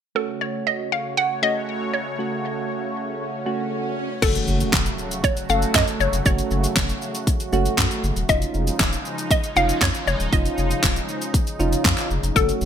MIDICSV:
0, 0, Header, 1, 8, 480
1, 0, Start_track
1, 0, Tempo, 508475
1, 146, Time_signature, 4, 2, 24, 8
1, 11943, End_track
2, 0, Start_track
2, 0, Title_t, "Synth pluck"
2, 0, Program_c, 0, 84
2, 149, Note_on_c, 0, 69, 94
2, 389, Note_on_c, 0, 73, 87
2, 395, Note_off_c, 0, 69, 0
2, 630, Note_on_c, 0, 75, 99
2, 635, Note_off_c, 0, 73, 0
2, 871, Note_on_c, 0, 77, 97
2, 876, Note_off_c, 0, 75, 0
2, 1108, Note_on_c, 0, 78, 108
2, 1116, Note_off_c, 0, 77, 0
2, 1348, Note_on_c, 0, 75, 98
2, 1355, Note_off_c, 0, 78, 0
2, 1827, Note_on_c, 0, 73, 85
2, 1842, Note_off_c, 0, 75, 0
2, 2509, Note_off_c, 0, 73, 0
2, 3987, Note_on_c, 0, 69, 98
2, 4949, Note_on_c, 0, 73, 108
2, 4975, Note_off_c, 0, 69, 0
2, 5189, Note_on_c, 0, 77, 108
2, 5195, Note_off_c, 0, 73, 0
2, 5429, Note_on_c, 0, 75, 108
2, 5435, Note_off_c, 0, 77, 0
2, 5651, Note_off_c, 0, 75, 0
2, 5669, Note_on_c, 0, 73, 94
2, 5891, Note_off_c, 0, 73, 0
2, 5909, Note_on_c, 0, 73, 99
2, 6590, Note_off_c, 0, 73, 0
2, 7828, Note_on_c, 0, 75, 101
2, 8750, Note_off_c, 0, 75, 0
2, 8791, Note_on_c, 0, 75, 109
2, 9030, Note_on_c, 0, 77, 107
2, 9036, Note_off_c, 0, 75, 0
2, 9272, Note_on_c, 0, 73, 89
2, 9276, Note_off_c, 0, 77, 0
2, 9379, Note_off_c, 0, 73, 0
2, 9510, Note_on_c, 0, 73, 87
2, 9748, Note_on_c, 0, 75, 96
2, 9756, Note_off_c, 0, 73, 0
2, 10430, Note_off_c, 0, 75, 0
2, 11667, Note_on_c, 0, 69, 97
2, 11943, Note_off_c, 0, 69, 0
2, 11943, End_track
3, 0, Start_track
3, 0, Title_t, "Synth keys"
3, 0, Program_c, 1, 88
3, 143, Note_on_c, 1, 57, 65
3, 147, Note_on_c, 1, 61, 59
3, 149, Note_on_c, 1, 66, 72
3, 762, Note_off_c, 1, 57, 0
3, 764, Note_off_c, 1, 61, 0
3, 765, Note_off_c, 1, 66, 0
3, 1344, Note_on_c, 1, 57, 71
3, 1347, Note_on_c, 1, 61, 62
3, 1349, Note_on_c, 1, 66, 78
3, 1808, Note_off_c, 1, 57, 0
3, 1810, Note_off_c, 1, 61, 0
3, 1810, Note_off_c, 1, 66, 0
3, 2064, Note_on_c, 1, 57, 69
3, 2067, Note_on_c, 1, 61, 64
3, 2069, Note_on_c, 1, 66, 75
3, 2682, Note_off_c, 1, 57, 0
3, 2684, Note_off_c, 1, 61, 0
3, 2685, Note_off_c, 1, 66, 0
3, 3265, Note_on_c, 1, 57, 82
3, 3268, Note_on_c, 1, 61, 78
3, 3269, Note_on_c, 1, 66, 95
3, 3729, Note_off_c, 1, 57, 0
3, 3730, Note_off_c, 1, 61, 0
3, 3731, Note_off_c, 1, 66, 0
3, 3985, Note_on_c, 1, 57, 74
3, 3987, Note_on_c, 1, 61, 66
3, 3990, Note_on_c, 1, 66, 79
3, 4603, Note_off_c, 1, 57, 0
3, 4604, Note_off_c, 1, 61, 0
3, 4605, Note_off_c, 1, 66, 0
3, 5184, Note_on_c, 1, 57, 74
3, 5186, Note_on_c, 1, 61, 67
3, 5189, Note_on_c, 1, 69, 81
3, 5648, Note_off_c, 1, 57, 0
3, 5649, Note_off_c, 1, 61, 0
3, 5651, Note_off_c, 1, 69, 0
3, 5904, Note_on_c, 1, 57, 72
3, 5906, Note_on_c, 1, 61, 67
3, 5909, Note_on_c, 1, 66, 82
3, 6522, Note_off_c, 1, 57, 0
3, 6524, Note_off_c, 1, 61, 0
3, 6525, Note_off_c, 1, 66, 0
3, 7104, Note_on_c, 1, 57, 93
3, 7106, Note_on_c, 1, 61, 82
3, 7109, Note_on_c, 1, 66, 100
3, 7568, Note_off_c, 1, 57, 0
3, 7569, Note_off_c, 1, 61, 0
3, 7571, Note_off_c, 1, 66, 0
3, 7824, Note_on_c, 1, 61, 72
3, 7827, Note_on_c, 1, 63, 70
3, 7829, Note_on_c, 1, 65, 84
3, 8443, Note_off_c, 1, 61, 0
3, 8444, Note_off_c, 1, 63, 0
3, 8445, Note_off_c, 1, 65, 0
3, 9025, Note_on_c, 1, 61, 79
3, 9028, Note_on_c, 1, 63, 70
3, 9029, Note_on_c, 1, 65, 84
3, 9489, Note_off_c, 1, 61, 0
3, 9490, Note_off_c, 1, 63, 0
3, 9491, Note_off_c, 1, 65, 0
3, 9745, Note_on_c, 1, 61, 72
3, 9747, Note_on_c, 1, 63, 65
3, 9749, Note_on_c, 1, 65, 80
3, 10363, Note_off_c, 1, 61, 0
3, 10364, Note_off_c, 1, 63, 0
3, 10365, Note_off_c, 1, 65, 0
3, 10945, Note_on_c, 1, 61, 90
3, 10947, Note_on_c, 1, 63, 83
3, 10950, Note_on_c, 1, 65, 97
3, 11409, Note_off_c, 1, 61, 0
3, 11410, Note_off_c, 1, 63, 0
3, 11411, Note_off_c, 1, 65, 0
3, 11663, Note_on_c, 1, 57, 73
3, 11666, Note_on_c, 1, 61, 66
3, 11668, Note_on_c, 1, 66, 81
3, 11943, Note_off_c, 1, 57, 0
3, 11943, Note_off_c, 1, 61, 0
3, 11943, Note_off_c, 1, 66, 0
3, 11943, End_track
4, 0, Start_track
4, 0, Title_t, "Analog synth pad"
4, 0, Program_c, 2, 89
4, 147, Note_on_c, 2, 49, 79
4, 147, Note_on_c, 2, 57, 71
4, 148, Note_on_c, 2, 66, 69
4, 148, Note_on_c, 2, 73, 85
4, 3949, Note_off_c, 2, 49, 0
4, 3949, Note_off_c, 2, 57, 0
4, 3949, Note_off_c, 2, 66, 0
4, 3950, Note_off_c, 2, 73, 0
4, 3987, Note_on_c, 2, 49, 83
4, 3987, Note_on_c, 2, 57, 75
4, 3988, Note_on_c, 2, 54, 76
4, 3988, Note_on_c, 2, 66, 90
4, 7789, Note_off_c, 2, 49, 0
4, 7789, Note_off_c, 2, 54, 0
4, 7789, Note_off_c, 2, 57, 0
4, 7790, Note_off_c, 2, 66, 0
4, 7825, Note_on_c, 2, 56, 74
4, 7826, Note_on_c, 2, 49, 83
4, 7826, Note_on_c, 2, 53, 75
4, 7826, Note_on_c, 2, 63, 88
4, 11628, Note_off_c, 2, 56, 0
4, 11629, Note_off_c, 2, 53, 0
4, 11629, Note_off_c, 2, 63, 0
4, 11666, Note_on_c, 2, 54, 75
4, 11666, Note_on_c, 2, 57, 76
4, 11666, Note_on_c, 2, 66, 86
4, 11943, Note_off_c, 2, 49, 0
4, 11943, Note_off_c, 2, 54, 0
4, 11943, Note_off_c, 2, 57, 0
4, 11943, Note_off_c, 2, 66, 0
4, 11943, End_track
5, 0, Start_track
5, 0, Title_t, "Sub bass"
5, 0, Program_c, 3, 38
5, 3988, Note_on_c, 3, 30, 110
5, 4136, Note_off_c, 3, 30, 0
5, 4226, Note_on_c, 3, 30, 103
5, 4375, Note_off_c, 3, 30, 0
5, 4468, Note_on_c, 3, 29, 93
5, 4617, Note_off_c, 3, 29, 0
5, 5185, Note_on_c, 3, 30, 99
5, 5335, Note_off_c, 3, 30, 0
5, 5427, Note_on_c, 3, 42, 103
5, 5501, Note_off_c, 3, 42, 0
5, 5665, Note_on_c, 3, 30, 89
5, 5740, Note_off_c, 3, 30, 0
5, 5785, Note_on_c, 3, 29, 97
5, 5860, Note_off_c, 3, 29, 0
5, 5907, Note_on_c, 3, 30, 120
5, 6056, Note_off_c, 3, 30, 0
5, 6145, Note_on_c, 3, 30, 100
5, 6294, Note_off_c, 3, 30, 0
5, 6388, Note_on_c, 3, 29, 96
5, 6536, Note_off_c, 3, 29, 0
5, 7106, Note_on_c, 3, 30, 95
5, 7255, Note_off_c, 3, 30, 0
5, 7346, Note_on_c, 3, 42, 102
5, 7421, Note_off_c, 3, 42, 0
5, 7587, Note_on_c, 3, 30, 97
5, 7661, Note_off_c, 3, 30, 0
5, 7707, Note_on_c, 3, 27, 93
5, 7781, Note_off_c, 3, 27, 0
5, 7827, Note_on_c, 3, 29, 109
5, 7975, Note_off_c, 3, 29, 0
5, 8067, Note_on_c, 3, 29, 105
5, 8216, Note_off_c, 3, 29, 0
5, 8309, Note_on_c, 3, 27, 105
5, 8457, Note_off_c, 3, 27, 0
5, 9028, Note_on_c, 3, 29, 91
5, 9177, Note_off_c, 3, 29, 0
5, 9267, Note_on_c, 3, 41, 106
5, 9341, Note_off_c, 3, 41, 0
5, 9508, Note_on_c, 3, 29, 90
5, 9582, Note_off_c, 3, 29, 0
5, 9628, Note_on_c, 3, 27, 95
5, 9702, Note_off_c, 3, 27, 0
5, 9748, Note_on_c, 3, 29, 103
5, 9897, Note_off_c, 3, 29, 0
5, 9989, Note_on_c, 3, 29, 106
5, 10137, Note_off_c, 3, 29, 0
5, 10229, Note_on_c, 3, 27, 102
5, 10377, Note_off_c, 3, 27, 0
5, 10948, Note_on_c, 3, 29, 96
5, 11096, Note_off_c, 3, 29, 0
5, 11187, Note_on_c, 3, 41, 107
5, 11262, Note_off_c, 3, 41, 0
5, 11429, Note_on_c, 3, 29, 87
5, 11503, Note_off_c, 3, 29, 0
5, 11548, Note_on_c, 3, 29, 89
5, 11622, Note_off_c, 3, 29, 0
5, 11667, Note_on_c, 3, 30, 114
5, 11816, Note_off_c, 3, 30, 0
5, 11908, Note_on_c, 3, 30, 101
5, 11943, Note_off_c, 3, 30, 0
5, 11943, End_track
6, 0, Start_track
6, 0, Title_t, "Impact"
6, 0, Program_c, 4, 103
6, 3987, Note_on_c, 4, 60, 85
6, 5907, Note_off_c, 4, 60, 0
6, 11943, End_track
7, 0, Start_track
7, 0, Title_t, "Swell"
7, 0, Program_c, 5, 103
7, 146, Note_on_c, 5, 60, 76
7, 3986, Note_off_c, 5, 60, 0
7, 11943, End_track
8, 0, Start_track
8, 0, Title_t, "Drums"
8, 3987, Note_on_c, 9, 36, 106
8, 3987, Note_on_c, 9, 42, 73
8, 3987, Note_on_c, 9, 49, 90
8, 3987, Note_on_c, 9, 82, 72
8, 4082, Note_off_c, 9, 36, 0
8, 4082, Note_off_c, 9, 42, 0
8, 4082, Note_off_c, 9, 49, 0
8, 4082, Note_off_c, 9, 82, 0
8, 4109, Note_on_c, 9, 42, 52
8, 4109, Note_on_c, 9, 82, 50
8, 4203, Note_off_c, 9, 42, 0
8, 4203, Note_off_c, 9, 82, 0
8, 4225, Note_on_c, 9, 82, 54
8, 4319, Note_off_c, 9, 82, 0
8, 4347, Note_on_c, 9, 42, 57
8, 4347, Note_on_c, 9, 82, 79
8, 4441, Note_off_c, 9, 42, 0
8, 4441, Note_off_c, 9, 82, 0
8, 4462, Note_on_c, 9, 38, 88
8, 4467, Note_on_c, 9, 42, 75
8, 4467, Note_on_c, 9, 82, 73
8, 4469, Note_on_c, 9, 36, 111
8, 4469, Note_on_c, 9, 39, 111
8, 4556, Note_off_c, 9, 38, 0
8, 4561, Note_off_c, 9, 42, 0
8, 4561, Note_off_c, 9, 82, 0
8, 4563, Note_off_c, 9, 36, 0
8, 4563, Note_off_c, 9, 39, 0
8, 4588, Note_on_c, 9, 42, 54
8, 4588, Note_on_c, 9, 82, 55
8, 4682, Note_off_c, 9, 42, 0
8, 4682, Note_off_c, 9, 82, 0
8, 4705, Note_on_c, 9, 82, 46
8, 4799, Note_off_c, 9, 82, 0
8, 4827, Note_on_c, 9, 42, 56
8, 4827, Note_on_c, 9, 82, 76
8, 4921, Note_off_c, 9, 42, 0
8, 4921, Note_off_c, 9, 82, 0
8, 4945, Note_on_c, 9, 36, 121
8, 4946, Note_on_c, 9, 42, 89
8, 4946, Note_on_c, 9, 82, 87
8, 5039, Note_off_c, 9, 36, 0
8, 5040, Note_off_c, 9, 42, 0
8, 5040, Note_off_c, 9, 82, 0
8, 5067, Note_on_c, 9, 42, 49
8, 5067, Note_on_c, 9, 82, 51
8, 5161, Note_off_c, 9, 42, 0
8, 5161, Note_off_c, 9, 82, 0
8, 5185, Note_on_c, 9, 82, 58
8, 5280, Note_off_c, 9, 82, 0
8, 5307, Note_on_c, 9, 42, 52
8, 5307, Note_on_c, 9, 82, 74
8, 5401, Note_off_c, 9, 42, 0
8, 5401, Note_off_c, 9, 82, 0
8, 5422, Note_on_c, 9, 38, 86
8, 5426, Note_on_c, 9, 36, 115
8, 5428, Note_on_c, 9, 42, 81
8, 5428, Note_on_c, 9, 82, 80
8, 5429, Note_on_c, 9, 39, 109
8, 5516, Note_off_c, 9, 38, 0
8, 5521, Note_off_c, 9, 36, 0
8, 5523, Note_off_c, 9, 39, 0
8, 5523, Note_off_c, 9, 42, 0
8, 5523, Note_off_c, 9, 82, 0
8, 5547, Note_on_c, 9, 42, 55
8, 5547, Note_on_c, 9, 82, 56
8, 5642, Note_off_c, 9, 42, 0
8, 5642, Note_off_c, 9, 82, 0
8, 5667, Note_on_c, 9, 82, 53
8, 5762, Note_off_c, 9, 82, 0
8, 5787, Note_on_c, 9, 42, 52
8, 5787, Note_on_c, 9, 82, 71
8, 5882, Note_off_c, 9, 42, 0
8, 5882, Note_off_c, 9, 82, 0
8, 5906, Note_on_c, 9, 42, 71
8, 5906, Note_on_c, 9, 82, 75
8, 5907, Note_on_c, 9, 36, 113
8, 6000, Note_off_c, 9, 42, 0
8, 6000, Note_off_c, 9, 82, 0
8, 6001, Note_off_c, 9, 36, 0
8, 6027, Note_on_c, 9, 42, 50
8, 6027, Note_on_c, 9, 82, 50
8, 6122, Note_off_c, 9, 42, 0
8, 6122, Note_off_c, 9, 82, 0
8, 6144, Note_on_c, 9, 82, 52
8, 6238, Note_off_c, 9, 82, 0
8, 6266, Note_on_c, 9, 42, 60
8, 6266, Note_on_c, 9, 82, 79
8, 6361, Note_off_c, 9, 42, 0
8, 6361, Note_off_c, 9, 82, 0
8, 6381, Note_on_c, 9, 38, 88
8, 6386, Note_on_c, 9, 42, 76
8, 6386, Note_on_c, 9, 82, 74
8, 6388, Note_on_c, 9, 36, 114
8, 6388, Note_on_c, 9, 39, 106
8, 6475, Note_off_c, 9, 38, 0
8, 6480, Note_off_c, 9, 42, 0
8, 6480, Note_off_c, 9, 82, 0
8, 6482, Note_off_c, 9, 36, 0
8, 6482, Note_off_c, 9, 39, 0
8, 6507, Note_on_c, 9, 42, 55
8, 6507, Note_on_c, 9, 82, 53
8, 6602, Note_off_c, 9, 42, 0
8, 6602, Note_off_c, 9, 82, 0
8, 6625, Note_on_c, 9, 82, 47
8, 6719, Note_off_c, 9, 82, 0
8, 6746, Note_on_c, 9, 42, 54
8, 6746, Note_on_c, 9, 82, 77
8, 6841, Note_off_c, 9, 42, 0
8, 6841, Note_off_c, 9, 82, 0
8, 6864, Note_on_c, 9, 36, 121
8, 6865, Note_on_c, 9, 42, 88
8, 6865, Note_on_c, 9, 82, 87
8, 6959, Note_off_c, 9, 36, 0
8, 6960, Note_off_c, 9, 42, 0
8, 6960, Note_off_c, 9, 82, 0
8, 6986, Note_on_c, 9, 42, 48
8, 6986, Note_on_c, 9, 82, 51
8, 7080, Note_off_c, 9, 42, 0
8, 7080, Note_off_c, 9, 82, 0
8, 7105, Note_on_c, 9, 82, 57
8, 7199, Note_off_c, 9, 82, 0
8, 7227, Note_on_c, 9, 42, 53
8, 7227, Note_on_c, 9, 82, 71
8, 7321, Note_off_c, 9, 42, 0
8, 7321, Note_off_c, 9, 82, 0
8, 7342, Note_on_c, 9, 38, 85
8, 7346, Note_on_c, 9, 36, 106
8, 7348, Note_on_c, 9, 39, 109
8, 7348, Note_on_c, 9, 42, 77
8, 7348, Note_on_c, 9, 82, 76
8, 7436, Note_off_c, 9, 38, 0
8, 7441, Note_off_c, 9, 36, 0
8, 7443, Note_off_c, 9, 39, 0
8, 7443, Note_off_c, 9, 42, 0
8, 7443, Note_off_c, 9, 82, 0
8, 7467, Note_on_c, 9, 42, 55
8, 7467, Note_on_c, 9, 82, 54
8, 7561, Note_off_c, 9, 42, 0
8, 7561, Note_off_c, 9, 82, 0
8, 7588, Note_on_c, 9, 82, 53
8, 7682, Note_off_c, 9, 82, 0
8, 7707, Note_on_c, 9, 42, 51
8, 7707, Note_on_c, 9, 82, 72
8, 7801, Note_off_c, 9, 42, 0
8, 7801, Note_off_c, 9, 82, 0
8, 7826, Note_on_c, 9, 42, 73
8, 7826, Note_on_c, 9, 82, 73
8, 7827, Note_on_c, 9, 36, 110
8, 7920, Note_off_c, 9, 42, 0
8, 7920, Note_off_c, 9, 82, 0
8, 7921, Note_off_c, 9, 36, 0
8, 7947, Note_on_c, 9, 42, 52
8, 7947, Note_on_c, 9, 82, 52
8, 8041, Note_off_c, 9, 42, 0
8, 8041, Note_off_c, 9, 82, 0
8, 8064, Note_on_c, 9, 82, 52
8, 8158, Note_off_c, 9, 82, 0
8, 8186, Note_on_c, 9, 42, 58
8, 8186, Note_on_c, 9, 82, 79
8, 8281, Note_off_c, 9, 42, 0
8, 8281, Note_off_c, 9, 82, 0
8, 8302, Note_on_c, 9, 38, 92
8, 8307, Note_on_c, 9, 42, 70
8, 8307, Note_on_c, 9, 82, 76
8, 8309, Note_on_c, 9, 36, 112
8, 8309, Note_on_c, 9, 39, 109
8, 8396, Note_off_c, 9, 38, 0
8, 8401, Note_off_c, 9, 42, 0
8, 8401, Note_off_c, 9, 82, 0
8, 8403, Note_off_c, 9, 36, 0
8, 8403, Note_off_c, 9, 39, 0
8, 8428, Note_on_c, 9, 42, 54
8, 8428, Note_on_c, 9, 82, 55
8, 8522, Note_off_c, 9, 42, 0
8, 8522, Note_off_c, 9, 82, 0
8, 8545, Note_on_c, 9, 82, 48
8, 8639, Note_off_c, 9, 82, 0
8, 8668, Note_on_c, 9, 42, 53
8, 8668, Note_on_c, 9, 82, 76
8, 8762, Note_off_c, 9, 42, 0
8, 8762, Note_off_c, 9, 82, 0
8, 8785, Note_on_c, 9, 36, 120
8, 8787, Note_on_c, 9, 42, 87
8, 8787, Note_on_c, 9, 82, 86
8, 8880, Note_off_c, 9, 36, 0
8, 8881, Note_off_c, 9, 42, 0
8, 8881, Note_off_c, 9, 82, 0
8, 8907, Note_on_c, 9, 42, 49
8, 8907, Note_on_c, 9, 82, 49
8, 9002, Note_off_c, 9, 42, 0
8, 9002, Note_off_c, 9, 82, 0
8, 9026, Note_on_c, 9, 82, 56
8, 9121, Note_off_c, 9, 82, 0
8, 9148, Note_on_c, 9, 42, 54
8, 9148, Note_on_c, 9, 82, 74
8, 9242, Note_off_c, 9, 42, 0
8, 9242, Note_off_c, 9, 82, 0
8, 9263, Note_on_c, 9, 38, 90
8, 9267, Note_on_c, 9, 36, 110
8, 9269, Note_on_c, 9, 39, 111
8, 9269, Note_on_c, 9, 42, 74
8, 9269, Note_on_c, 9, 82, 77
8, 9357, Note_off_c, 9, 38, 0
8, 9361, Note_off_c, 9, 36, 0
8, 9364, Note_off_c, 9, 39, 0
8, 9364, Note_off_c, 9, 42, 0
8, 9364, Note_off_c, 9, 82, 0
8, 9388, Note_on_c, 9, 42, 55
8, 9388, Note_on_c, 9, 82, 55
8, 9482, Note_off_c, 9, 42, 0
8, 9482, Note_off_c, 9, 82, 0
8, 9509, Note_on_c, 9, 82, 53
8, 9604, Note_off_c, 9, 82, 0
8, 9630, Note_on_c, 9, 42, 53
8, 9630, Note_on_c, 9, 82, 73
8, 9724, Note_off_c, 9, 42, 0
8, 9724, Note_off_c, 9, 82, 0
8, 9748, Note_on_c, 9, 36, 116
8, 9748, Note_on_c, 9, 42, 72
8, 9748, Note_on_c, 9, 82, 70
8, 9842, Note_off_c, 9, 36, 0
8, 9842, Note_off_c, 9, 42, 0
8, 9842, Note_off_c, 9, 82, 0
8, 9869, Note_on_c, 9, 42, 52
8, 9869, Note_on_c, 9, 82, 52
8, 9964, Note_off_c, 9, 42, 0
8, 9964, Note_off_c, 9, 82, 0
8, 9986, Note_on_c, 9, 82, 53
8, 10080, Note_off_c, 9, 82, 0
8, 10108, Note_on_c, 9, 42, 57
8, 10108, Note_on_c, 9, 82, 80
8, 10202, Note_off_c, 9, 42, 0
8, 10202, Note_off_c, 9, 82, 0
8, 10223, Note_on_c, 9, 38, 85
8, 10228, Note_on_c, 9, 42, 72
8, 10228, Note_on_c, 9, 82, 74
8, 10229, Note_on_c, 9, 36, 119
8, 10230, Note_on_c, 9, 39, 110
8, 10318, Note_off_c, 9, 38, 0
8, 10323, Note_off_c, 9, 42, 0
8, 10323, Note_off_c, 9, 82, 0
8, 10324, Note_off_c, 9, 36, 0
8, 10325, Note_off_c, 9, 39, 0
8, 10349, Note_on_c, 9, 42, 53
8, 10349, Note_on_c, 9, 82, 53
8, 10443, Note_off_c, 9, 42, 0
8, 10443, Note_off_c, 9, 82, 0
8, 10466, Note_on_c, 9, 82, 49
8, 10560, Note_off_c, 9, 82, 0
8, 10588, Note_on_c, 9, 42, 55
8, 10588, Note_on_c, 9, 82, 74
8, 10683, Note_off_c, 9, 42, 0
8, 10683, Note_off_c, 9, 82, 0
8, 10706, Note_on_c, 9, 36, 122
8, 10707, Note_on_c, 9, 42, 90
8, 10707, Note_on_c, 9, 82, 88
8, 10800, Note_off_c, 9, 36, 0
8, 10801, Note_off_c, 9, 42, 0
8, 10801, Note_off_c, 9, 82, 0
8, 10828, Note_on_c, 9, 42, 48
8, 10828, Note_on_c, 9, 82, 49
8, 10922, Note_off_c, 9, 42, 0
8, 10922, Note_off_c, 9, 82, 0
8, 10947, Note_on_c, 9, 82, 57
8, 11042, Note_off_c, 9, 82, 0
8, 11069, Note_on_c, 9, 42, 55
8, 11069, Note_on_c, 9, 82, 75
8, 11163, Note_off_c, 9, 42, 0
8, 11163, Note_off_c, 9, 82, 0
8, 11183, Note_on_c, 9, 38, 84
8, 11187, Note_on_c, 9, 36, 105
8, 11190, Note_on_c, 9, 39, 113
8, 11190, Note_on_c, 9, 42, 81
8, 11190, Note_on_c, 9, 82, 79
8, 11278, Note_off_c, 9, 38, 0
8, 11282, Note_off_c, 9, 36, 0
8, 11284, Note_off_c, 9, 42, 0
8, 11284, Note_off_c, 9, 82, 0
8, 11285, Note_off_c, 9, 39, 0
8, 11307, Note_on_c, 9, 39, 65
8, 11309, Note_on_c, 9, 42, 52
8, 11309, Note_on_c, 9, 82, 55
8, 11402, Note_off_c, 9, 39, 0
8, 11403, Note_off_c, 9, 42, 0
8, 11403, Note_off_c, 9, 82, 0
8, 11429, Note_on_c, 9, 82, 55
8, 11523, Note_off_c, 9, 82, 0
8, 11550, Note_on_c, 9, 42, 52
8, 11550, Note_on_c, 9, 82, 74
8, 11644, Note_off_c, 9, 42, 0
8, 11644, Note_off_c, 9, 82, 0
8, 11668, Note_on_c, 9, 36, 113
8, 11669, Note_on_c, 9, 42, 72
8, 11669, Note_on_c, 9, 82, 74
8, 11762, Note_off_c, 9, 36, 0
8, 11763, Note_off_c, 9, 42, 0
8, 11763, Note_off_c, 9, 82, 0
8, 11789, Note_on_c, 9, 42, 51
8, 11789, Note_on_c, 9, 82, 52
8, 11884, Note_off_c, 9, 42, 0
8, 11884, Note_off_c, 9, 82, 0
8, 11906, Note_on_c, 9, 82, 52
8, 11943, Note_off_c, 9, 82, 0
8, 11943, End_track
0, 0, End_of_file